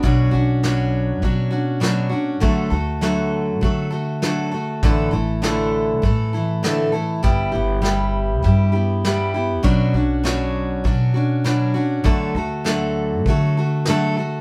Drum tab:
SD |--o---o-|--o---o-|--o---o-|--o---o-|
BD |o---o---|o---o---|o---o---|o---o---|

SD |--o---o-|--o---o-|
BD |o---o---|o---o---|